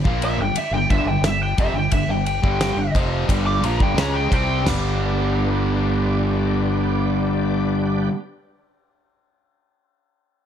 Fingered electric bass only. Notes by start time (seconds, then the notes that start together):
0.04 A#1
0.38 G1
0.55 muted fingered electric bass stroke
0.71 G1
0.90 G1
1.05 G1
1.21 G1
1.58 F1
1.74 G1
1.92 G1
2.08 G1
2.44 G1
2.75 G1
2.94 F1
3.29 G1
3.61 A#1
3.80 G1
3.94 C#2
4.32 C2
4.64 G1